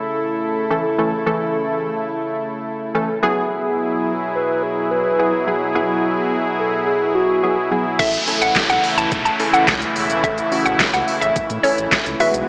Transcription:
Already playing: analog synth pad C#3 A3 E4 A4, soft synth lead A4
0.70 analog polysynth E3 A3 C#4 A4
0.98 analog polysynth E3 A3 C#4 A4
1.26 analog polysynth E3 A3 C#4 A4
2.95 analog polysynth E3 A3 C#4 A4
3.23 analog synth pad B2 F#3 E4 G#4, analog polysynth F#3 B3 E4 G#4
4.35 soft synth lead B4
4.63 soft synth lead G#4
4.91 soft synth lead B4
5.05 soft synth lead B4
5.19 analog polysynth F#3 B3 E4 G#4
5.47 analog polysynth F#3 B3 E4 G#4
5.75 analog polysynth F#3 B3 E4 G#4
6.59 soft synth lead A4
6.87 soft synth lead G#4
7.15 soft synth lead F#4
7.43 analog polysynth F#3 B3 E4 G#4
7.71 analog polysynth F#3 B3 E4 G#4
7.99 sub bass A1, analog synth pad C#3 E3 A3 E4, analog polysynth C#4 E4 A4, synth pluck E5, kick, closed hi-hat, crash, downlifter, shaker
8.14 closed hi-hat, shaker
8.27 analog polysynth C#4 E4 A4, open hi-hat, shaker
8.42 sub bass A1, synth pluck F#5, closed hi-hat, shaker
8.55 kick, snare, clap, closed hi-hat, shaker
8.70 sub bass B1, synth pluck F#5, closed hi-hat, shaker
8.84 open hi-hat, shaker
8.98 sub bass A1, synth pluck A5, closed hi-hat, shaker
9.12 sub bass B1, kick, closed hi-hat, shaker
9.25 synth pluck A5, closed hi-hat, shaker
9.39 analog polysynth C#4 E4 A4, open hi-hat, shaker
9.54 synth pluck F#5, closed hi-hat, shaker
9.68 sub bass C#2, kick, snare, clap, closed hi-hat, shaker
9.82 closed hi-hat, shaker
9.96 sub bass E1, open hi-hat, shaker
10.10 closed hi-hat, shaker
10.24 sub bass A1, analog polysynth C#4 E4 A4, synth pluck E5, kick, closed hi-hat, shaker
10.38 closed hi-hat, shaker
10.52 analog polysynth C#4 E4 F#4, open hi-hat, shaker
10.66 sub bass A1, synth pluck F#5, closed hi-hat, shaker
10.80 kick, snare, clap, closed hi-hat, shaker
10.93 sub bass C#2, synth pluck F#5, closed hi-hat, shaker
11.08 open hi-hat, shaker
11.21 sub bass A1, synth pluck E5, closed hi-hat, shaker
11.36 sub bass A2, kick, closed hi-hat, shaker
11.50 sub bass A2, closed hi-hat, shaker
11.63 analog polysynth C#4 E4 A4, synth pluck C#5, open hi-hat, shaker
11.78 sub bass A1, closed hi-hat, shaker
11.92 kick, snare, clap, closed hi-hat, shaker
12.06 sub bass C#2, closed hi-hat, shaker
12.20 sub bass E1, analog synth pad E3 G#3 B3 F#4, analog polysynth G#3 B3 E4 F#4 B4, synth pluck E5, open hi-hat, shaker
12.34 sub bass B1, closed hi-hat, shaker

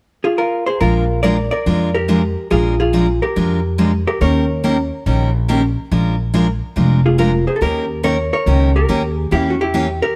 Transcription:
0.24 hollow-body jazz guitar F4 G#4
0.38 hollow-body jazz guitar F4 A#4
0.66 hollow-body jazz guitar G#4 C5
0.80 upright bass A#1, steel-string acoustic guitar F3 G#3 D4 F4 A#4, hollow-body jazz guitar F4 A#4
1.23 steel-string acoustic guitar F3 G#3 D4 F4 A#4, hollow-body jazz guitar A#4 D5
1.51 hollow-body jazz guitar A#4 D5
1.66 upright bass F2, steel-string acoustic guitar F3 G#3 D4 F4 A#4
1.95 hollow-body jazz guitar G4 A#4
2.08 steel-string acoustic guitar F3 G#3 D4 F4 A#4
2.50 upright bass A#1, steel-string acoustic guitar F3 G#3 D4 F4 A#4, hollow-body jazz guitar F4 G#4
2.80 hollow-body jazz guitar F4 G#4
2.93 steel-string acoustic guitar F3 G#3 D4 F4 A#4
3.22 hollow-body jazz guitar G4 A#4
3.36 upright bass F2, steel-string acoustic guitar F3 G#3 D4 F4 A#4
3.78 steel-string acoustic guitar F3 G#3 D4 F4 A#4
4.07 hollow-body jazz guitar G4 A#4
4.21 upright bass D#2, steel-string acoustic guitar D#3 A#3 C#4 G4 A#4, hollow-body jazz guitar A#4 C#5
4.64 steel-string acoustic guitar D#3 A#3 C#4 G4 A#4
5.06 upright bass A#1, steel-string acoustic guitar D#3 A#3 C#4 G4 A#4
5.48 steel-string acoustic guitar D#3 A#3 C#4 G4 A#4
5.91 upright bass A#1, steel-string acoustic guitar F3 G#3 D4 F4 A#4
6.34 steel-string acoustic guitar F3 G#3 D4 F4 A#4
6.76 upright bass F1, steel-string acoustic guitar F3 G#3 D4 F4 A#4
7.06 hollow-body jazz guitar F4 G#4
7.18 steel-string acoustic guitar F3 G#3 D4 F4 A#4, hollow-body jazz guitar F4 A#4
7.47 hollow-body jazz guitar G#4 C5
7.56 hollow-body jazz guitar A4
7.61 upright bass D#2, steel-string acoustic guitar D#3 A#3 C#4 G4 A#4, hollow-body jazz guitar G4 A#4
8.03 steel-string acoustic guitar D#3 A#3 C#4 G4 A#4, hollow-body jazz guitar A#4 C#5
8.33 hollow-body jazz guitar A#4 C#5
8.46 upright bass C#2, steel-string acoustic guitar D#3 A#3 C#4 G4 A#4
8.76 hollow-body jazz guitar G4 A#4
8.89 upright bass D#2, steel-string acoustic guitar D#3 A#3 C#4 G4 A#4
9.16 hollow-body jazz guitar G#4
9.31 upright bass E2, steel-string acoustic guitar E3 A#3 C#4 G4, hollow-body jazz guitar E4 G4
9.50 hollow-body jazz guitar F#4
9.61 hollow-body jazz guitar E4 G4
9.74 steel-string acoustic guitar E3 A#3 C#4 G4
10.02 hollow-body jazz guitar G4 A#4

